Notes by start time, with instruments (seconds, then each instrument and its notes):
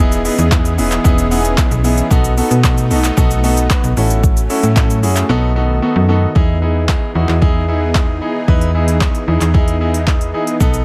Already playing: supersaw synth E3 B3 G#4
0.00 fm bass E1, grand piano B3 D#4 E4 G#4, supersaw synth C#4
0.12 closed hi-hat, shaker
0.25 grand piano B3 D#4 E4 G#4, open hi-hat, shaker
0.38 fm bass E2, closed hi-hat, shaker
0.51 grand piano D#4 E4 G#4, kick, clap, shaker
0.65 closed hi-hat, shaker
0.78 fm bass E1, grand piano B3 D#4 E4 G#4, open hi-hat, shaker
0.92 clap, closed hi-hat, shaker
1.04 fm bass E1, grand piano B3 D#4 E4 G#4, kick, shaker
1.18 closed hi-hat, shaker
1.31 grand piano B3 D#4 E4 G#4 F#5, open hi-hat, shaker
1.40 grand piano G#5
1.45 closed hi-hat, shaker
1.58 grand piano B3 D#4 E4 G#4 E5, kick, clap, shaker
1.71 fm bass B1, closed hi-hat, shaker
1.84 grand piano B3 D#4 E4 G#4, open hi-hat, shaker
1.98 closed hi-hat, shaker
2.10 fm bass B1, supersaw synth A3 D#4, grand piano B3 D#4 F#4 A4, kick, shaker
2.24 closed hi-hat, shaker
2.37 grand piano B3 D#4 F#4 A4, open hi-hat, shaker
2.51 fm bass B2, closed hi-hat, shaker
2.64 grand piano B3 D#4 F#4 A4, kick, clap, shaker
2.78 closed hi-hat, shaker
2.91 fm bass B1, grand piano B3 D#4 F#4 A4, open hi-hat, shaker
3.04 clap, closed hi-hat, shaker
3.17 fm bass B1, grand piano B3 D#4 F#4 A4, kick, shaker
3.31 closed hi-hat, shaker
3.44 grand piano B3 D#4 F#4 A4, open hi-hat, shaker
3.57 closed hi-hat, shaker
3.70 grand piano B3 D#4 F#4 B4, kick, clap, shaker
3.84 fm bass B1, closed hi-hat, shaker
3.97 fm bass A1, supersaw synth F#3 A3 C#4, grand piano C#4 E4 F#4 A4, open hi-hat, shaker
4.10 closed hi-hat, shaker
4.24 kick, shaker
4.37 closed hi-hat, shaker
4.50 grand piano C#4 E4 F#4 A4, open hi-hat, shaker
4.63 fm bass A2, closed hi-hat, shaker
4.76 grand piano C#4 E4 F#4 A4, kick, clap, shaker
4.90 closed hi-hat, shaker
5.03 fm bass F#2, grand piano C#4 E4 F#4 G#4, open hi-hat, shaker
5.16 clap, closed hi-hat, shaker
5.29 fm bass B1, supersaw synth D#3 B3, grand piano B3 D#4 F#4 A4
5.56 grand piano B3 D#4 F#4 A4
5.82 grand piano B3 D#4 F#4 A4
5.96 fm bass F#2
6.09 grand piano B3 D#4 F#4 A4
6.35 fm bass E2, supersaw synth E3 B3 D#4 G#4, grand piano D#4 E4 G#4, kick
6.62 grand piano D#4 E4 G#4
6.88 grand piano D#4 E4 G#4, kick, clap
7.15 fm bass E2, grand piano D#4 E4 F#4
7.29 fm bass E2, clap
7.42 grand piano D#4 E4 G#4, kick
7.68 grand piano D#4 E4 G#4
7.95 grand piano D#4 E4 G#4, kick, clap
8.21 grand piano D#4 E4 G#4
8.48 fm bass E2, grand piano D#4 E4 B4, kick
8.61 closed hi-hat
8.74 grand piano D#4 E4 G#4
8.88 closed hi-hat
9.01 grand piano D#4 E4 G#4, kick, clap
9.15 closed hi-hat
9.27 fm bass E2, grand piano D#4 E4 G#4
9.41 fm bass E2, clap, closed hi-hat
9.54 grand piano D#4 E4 G#4, kick
9.68 closed hi-hat
9.81 grand piano D#4 E4 G#4
9.94 closed hi-hat
10.07 grand piano D#4 E4 G#4, kick, clap
10.21 closed hi-hat
10.34 grand piano D#4 E4 G#4
10.47 closed hi-hat
10.60 fm bass B1, supersaw synth A3, grand piano B3 D#4 A4, kick, shaker
10.74 closed hi-hat, shaker